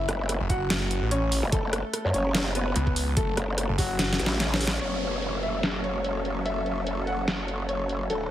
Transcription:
Already playing: grand piano E4 E5
0.09 wobble bass F#1, cross-stick, closed hi-hat
0.29 cross-stick, closed hi-hat
0.40 detuned saw bass F#1
0.50 grand piano F#4 F#5, kick, closed hi-hat
0.70 detuned saw bass F#1, snare, closed hi-hat
0.91 closed hi-hat
1.02 detuned saw bass A1
1.11 grand piano C#4 C#5, closed hi-hat
1.32 open hi-hat
1.43 wobble bass F#1
1.52 wobble bass F#1, grand piano A3 A4, kick, closed hi-hat
1.73 cross-stick, closed hi-hat
1.94 cross-stick, closed hi-hat
2.05 wobble bass F#2
2.14 wobble bass F#1, grand piano C#4 C#5, closed hi-hat
2.35 cross-stick, snare, closed hi-hat
2.55 grand piano B3 B4, closed hi-hat
2.76 detuned saw bass C#2, closed hi-hat
2.87 kick
2.96 open hi-hat
3.17 detuned saw bass F#1, grand piano A3 A4, kick, closed hi-hat
3.37 wobble bass F#1, cross-stick, closed hi-hat
3.58 cross-stick, closed hi-hat
3.69 detuned saw bass F#1
3.78 grand piano F#3 F#4, kick, open hi-hat
3.99 detuned saw bass F#1, snare, closed hi-hat
4.13 snare
4.19 wobble bass A1, closed hi-hat
4.26 snare
4.40 grand piano C#3 C#4, snare, closed hi-hat
4.54 snare
4.61 open hi-hat
4.67 snare
4.81 wobble bass F#1, supersaw synth F#3 C#4 A4, grand piano C#5, closed hi-hat, crash, downlifter
5.02 closed hi-hat
5.22 closed hi-hat
5.43 grand piano E5, closed hi-hat
5.63 snare, closed hi-hat
5.84 grand piano C#5, closed hi-hat
6.04 closed hi-hat
6.25 closed hi-hat
6.46 grand piano E5, closed hi-hat
6.66 closed hi-hat
6.87 closed hi-hat
7.07 grand piano F#5, closed hi-hat
7.28 snare, closed hi-hat
7.48 closed hi-hat
7.69 grand piano C#5, closed hi-hat
7.89 closed hi-hat
8.10 wobble bass D1, supersaw synth D3 A3 F#4, grand piano A4, closed hi-hat

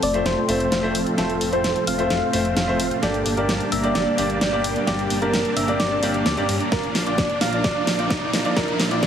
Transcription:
Already playing: string section F3 C4 A4, riser
0.03 detuned saw bass F1, supersaw synth A3 C4 F4 C5 A5, soft synth lead D5, open hi-hat
0.14 grand piano A3 C4 F4 C5, closed hi-hat
0.26 detuned saw bass F1, soft synth lead C5, snare, closed hi-hat
0.37 supersaw synth A3 C4 F4 C5 G5
0.48 detuned saw bass F1, grand piano A3 C4 F4 C5, open hi-hat
0.60 closed hi-hat
0.72 detuned saw bass F1, supersaw synth A3 C4 F4 C5 F5, soft synth lead C5, snare, closed hi-hat
0.83 detuned saw bass F1, grand piano A3 C4 F4 C5
0.95 detuned saw bass F1, open hi-hat
1.07 closed hi-hat
1.18 detuned saw bass F1, grand piano A3 C4 F4 C5, supersaw synth A3 C4 F4 C5 F5, soft synth lead A4, snare, closed hi-hat
1.30 closed hi-hat
1.41 detuned saw bass F1, open hi-hat
1.52 detuned saw bass F1, grand piano A3 C4 F4 C5, supersaw synth A3 C4 F4 C5 G5, soft synth lead C5, closed hi-hat
1.64 detuned saw bass F1, snare, closed hi-hat
1.76 closed hi-hat
1.87 detuned saw bass F1, supersaw synth A3 C4 F4 C5 A5, soft synth lead F5, open hi-hat
1.98 grand piano A3 C4 F4 C5, closed hi-hat
2.10 detuned saw bass F1, soft synth lead F5, snare, closed hi-hat
2.22 supersaw synth A3 C4 F4 C5 G5
2.33 detuned saw bass F1, grand piano A3 C4 F4 C5, open hi-hat
2.45 closed hi-hat
2.56 detuned saw bass F1, supersaw synth A3 C4 F4 C5 F5, soft synth lead F5, snare, closed hi-hat
2.68 detuned saw bass F1, grand piano A3 C4 F4 C5
2.80 detuned saw bass F1, open hi-hat
2.91 closed hi-hat
3.02 detuned saw bass G1, string section G3 A#3 D4, grand piano A#3 D4 G4 D5, supersaw synth A#3 D4 G4 D5 G5, soft synth lead A4, snare, closed hi-hat
3.14 closed hi-hat
3.26 detuned saw bass G1, open hi-hat
3.37 detuned saw bass G1, grand piano A#3 D4 G4 D5, supersaw synth A#3 D4 G4 D5 A5, soft synth lead A#4, closed hi-hat
3.49 detuned saw bass G1, snare, closed hi-hat
3.60 closed hi-hat
3.72 detuned saw bass G1, supersaw synth A#3 D4 G4 D5 A#5, soft synth lead E5, open hi-hat
3.83 grand piano A#3 D4 G4 D5, closed hi-hat
3.95 detuned saw bass G1, soft synth lead D5, snare, closed hi-hat
4.07 supersaw synth A#3 D4 G4 D5 A5
4.17 detuned saw bass G1, grand piano A#3 D4 G4 D5, open hi-hat
4.30 closed hi-hat
4.41 detuned saw bass G1, supersaw synth A#3 D4 G4 D5 G5, soft synth lead D5, snare, closed hi-hat
4.52 detuned saw bass G1, grand piano A#3 D4 G4 D5
4.64 detuned saw bass G1, open hi-hat
4.76 closed hi-hat
4.87 detuned saw bass G1, grand piano A#3 D4 G4 D5, supersaw synth A#3 D4 G4 D5 G5, soft synth lead G4, snare, closed hi-hat
4.99 closed hi-hat
5.10 detuned saw bass G1, open hi-hat
5.21 detuned saw bass G1, grand piano A#3 D4 G4 D5, supersaw synth A#3 D4 G4 D5 A5, soft synth lead A#4, closed hi-hat
5.34 detuned saw bass G1, snare, closed hi-hat
5.45 closed hi-hat
5.57 detuned saw bass G1, supersaw synth A#3 D4 G4 D5 A#5, soft synth lead E5, open hi-hat
5.67 grand piano A#3 D4 G4 D5, closed hi-hat
5.80 detuned saw bass G1, soft synth lead D5, snare, closed hi-hat
5.91 supersaw synth A#3 D4 G4 D5 A5
6.02 detuned saw bass G1, grand piano A#3 D4 G4 D5, supersaw synth A#3 D4 G4 D5 F5, open hi-hat
6.14 closed hi-hat
6.26 detuned saw bass D2, soft synth lead D5, snare, closed hi-hat
6.37 detuned saw bass G1, grand piano A#3 D4 G4 D5, supersaw synth A#3 D4 G4 D5 A#5, closed hi-hat
6.49 detuned saw bass G2, open hi-hat
6.60 closed hi-hat
6.71 detuned saw bass A#1, string section F3 A#3, grand piano A#3 D4 F4 D5, supersaw synth A#3 D4 F4 D5 F5, soft synth lead A#4, kick, snare, closed hi-hat
6.83 closed hi-hat
6.95 detuned saw bass A#1, snare, open hi-hat
7.06 detuned saw bass A#1, grand piano A#3 D4 F4 D5, supersaw synth A#3 D4 F4 D5 G5, soft synth lead D5, closed hi-hat
7.18 detuned saw bass A#1, kick, snare, closed hi-hat
7.30 closed hi-hat
7.41 detuned saw bass A#1, supersaw synth A#3 D4 F4 D5 A#5, soft synth lead F5, snare, open hi-hat
7.52 grand piano A#3 D4 F4 D5, closed hi-hat
7.64 detuned saw bass A#1, grand piano A#3 D4 F4 D5, supersaw synth A#3 D4 F4 D5 F5, soft synth lead D5, kick, snare, closed hi-hat
7.87 detuned saw bass A#1, snare, open hi-hat
7.99 grand piano A#3 D4 F4 D5, supersaw synth A#3 D4 F4 D5 G5, closed hi-hat
8.10 detuned saw bass A#1, soft synth lead D5, kick, snare, closed hi-hat
8.22 detuned saw bass A#1
8.33 detuned saw bass A#1, supersaw synth A#3 D4 F4 D5 A#5, snare, open hi-hat
8.45 grand piano A#3 D4 F4 D5, closed hi-hat
8.56 detuned saw bass A#1, grand piano A#3 D4 F4 D5, supersaw synth A#3 D4 F4 D5 F5, soft synth lead A#4, kick, snare, closed hi-hat
8.68 closed hi-hat
8.80 detuned saw bass A#1, snare, open hi-hat
8.91 detuned saw bass A#1, grand piano A#3 D4 F4 D5, supersaw synth A#3 D4 F4 D5 G5, soft synth lead D5, closed hi-hat
9.03 detuned saw bass A#1, kick, snare, closed hi-hat

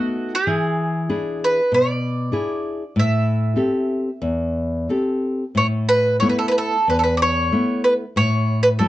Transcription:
Already playing: nylon-string guitar A3 B3 D#4, mandolin F#4
0.35 mandolin G#4
0.47 nylon-string guitar E3
1.09 nylon-string guitar D4 E4 G#4
1.44 mandolin B4
1.72 nylon-string guitar B2, mandolin D5
2.32 nylon-string guitar D4 E4 G#4
2.96 nylon-string guitar A2, mandolin E5
3.56 nylon-string guitar C4 G4 A4
4.22 nylon-string guitar E2
4.89 nylon-string guitar C4 G4 A4
5.55 nylon-string guitar A2, mandolin C#5
5.89 mandolin B4
6.20 nylon-string guitar A3 B3 E4, mandolin C#5
6.29 mandolin B4
6.39 mandolin A4
6.48 mandolin B4
6.58 mandolin A4
6.88 nylon-string guitar E2, mandolin B4
6.99 mandolin A4
7.04 mandolin B4
7.17 mandolin D5
7.22 mandolin C#5
7.52 nylon-string guitar A3 B3 E4
7.84 mandolin B4
8.16 nylon-string guitar A2, mandolin C#5
8.63 mandolin B4
8.79 nylon-string guitar F#3 A3 E4, mandolin A4

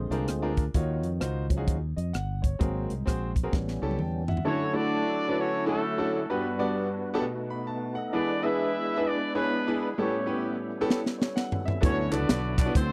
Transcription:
Already playing: grand piano A#2, tonewheel organ D3 G#3 C4 F4 G#4 C5
0.10 fingered electric bass C2, grand piano D4 F4 G#4 A#4, cross-stick, closed hi-hat
0.28 fingered electric bass D2, cross-stick, closed hi-hat
0.42 grand piano D4 F4 G#4 A#4
0.57 kick, closed hi-hat
0.74 fingered electric bass D#2, grand piano D#3 D#4 F4 F#4 C#5, kick, closed hi-hat
1.03 fingered electric bass F2, closed hi-hat
1.21 fingered electric bass C#2, grand piano D#4 F4 F#4 C5, cross-stick, closed hi-hat
1.50 tonewheel organ F3 F#3 C#4, kick, closed hi-hat
1.57 grand piano D#4 F4 F#4 G#4
1.68 fingered electric bass D#2, kick, closed hi-hat
1.96 fingered electric bass F2, grand piano D#5, closed hi-hat
2.13 fingered electric bass G1, grand piano F#5, cross-stick, closed hi-hat
2.42 grand piano C#5, kick, closed hi-hat
2.59 fingered electric bass G#1, grand piano G#2 C4 F#4 G#4 A#4, tonewheel organ F#3 A#3 C4, kick, closed hi-hat
2.90 fingered electric bass C2, closed hi-hat
3.06 fingered electric bass A#1, grand piano C4 F#4 G#4 C5, kick, cross-stick, closed hi-hat
3.36 kick, closed hi-hat
3.43 grand piano C4 F#4 G#4 A#4
3.52 fingered electric bass A1, grand piano A2, tonewheel organ G3 B3 C#4, kick, snare
3.68 snare
3.82 fingered electric bass C#2, grand piano C#4 E4 G4 A4 A5
3.91 high tom
3.99 fingered electric bass E2, grand piano G5 A5, mid tom
4.28 grand piano E5 F#5, floor tom
4.37 floor tom
4.45 grand piano D3 C#4 D4 E4 F#4 A4, tonewheel organ D3 F#3 A3 E4 A4, horn section C#4 E4 F#4 C#5
4.73 grand piano A3 D4 E4 F#4 A4, horn section D4 F#4 A4 D5
5.28 grand piano C#4 D4 E4 F#4 B4
5.39 horn section C#4 E4 F#4 C#5
5.66 horn section A3 C#4 F#4 A4, grand piano C#4 D4 E4 F#4 A4
5.98 grand piano C#4 D4 E4 F#4 A4
6.14 horn section A3 A4
6.30 grand piano G2 B3 D4 F#4 G4 B4, tonewheel organ G3 B3 D4 F#4 A#4, horn section B3 D4 F#4 B4
6.36 tonewheel organ B4
6.59 grand piano G3 B3 D4 F#4 D5
7.14 grand piano B3 D4 F#4 G4 A4
7.21 grand piano B2, tonewheel organ A3 B3 D4 F#4 B4
7.28 tonewheel organ D#4
7.50 grand piano B5
7.67 tonewheel organ F#4 B4, grand piano A5
7.95 tonewheel organ A4 D#5, grand piano F#5
8.13 grand piano E3 B3 D4 E4 G#4 B4, tonewheel organ G#3 B3 D4 E4 A#4, horn section D4 G#4 B4 D5
8.19 tonewheel organ B4
8.42 grand piano B3 D4 E4 G#4 B4, horn section E4 G#4 B4 E5
8.96 grand piano B3 D4 E4 G#4 B4
9.07 horn section D4 G#4 B4 D5
9.35 grand piano B3 D4 E4 G#4 C#5, horn section B3 D4 G#4 B4
9.67 grand piano B3 D4 E4 G#4 B4
9.81 horn section B3 B4
9.98 grand piano A2 B3 C#4 E4 G4 A4, tonewheel organ G3 B3 C4 E4 A4, horn section C#4 E4 G4 C#5
10.04 tonewheel organ C#4
10.26 grand piano B3 C#4 E4 G4 B4
10.81 grand piano B3 C#4 E4 G4 A4
10.90 snare
11.06 snare
11.19 grand piano C#5, snare
11.36 grand piano F#5, snare
11.52 floor tom
11.65 grand piano E5, floor tom
11.81 fingered electric bass D2, grand piano D3 B3 D4 E4 F#4 A4, tonewheel organ F#3 B3 D4 E4 A4, horn section C#4 E4 F#4 C#5, kick, closed hi-hat
12.11 fingered electric bass C#2, grand piano B3 D4 E4 F#4 A4, horn section D4 F#4 B4 D5, clap, closed hi-hat
12.29 fingered electric bass B1, snare, closed hi-hat
12.58 horn section D4 D5, kick, clap, closed hi-hat
12.65 grand piano B3 D4 E4 F#4 B4
12.74 fingered electric bass D2, grand piano D3, tonewheel organ E3 A3 C4 D4 A4, horn section C4 F#4 A4 C5, kick, closed hi-hat
12.81 tonewheel organ F#3

